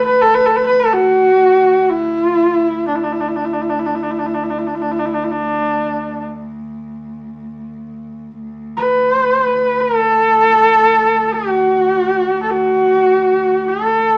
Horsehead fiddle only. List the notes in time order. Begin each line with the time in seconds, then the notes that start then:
0.06 B4
0.21 A4
0.35 B4
0.46 A4
0.56 B4
0.67 B4
0.80 A4
0.93 F#4
1.90 E4
2.88 D4
2.96 E4
3.04 D4
3.13 E4
3.20 D4
3.28 E4
3.36 D4
3.45 E4
3.53 D4
3.62 E4
3.69 D4
3.79 E4
3.86 D4
3.95 E4
4.03 D4
4.11 E4
4.19 D4
4.26 E4
4.34 D4
4.43 E4
4.50 D4
4.58 E4
4.67 D4
4.75 E4
4.82 D4
4.91 E4
4.99 D4
5.06 E4
5.14 D4
5.24 E4
5.31 D4
8.77 B4
9.81 A4
11.33 F#4
12.43 A4
12.50 F#4
13.68 A4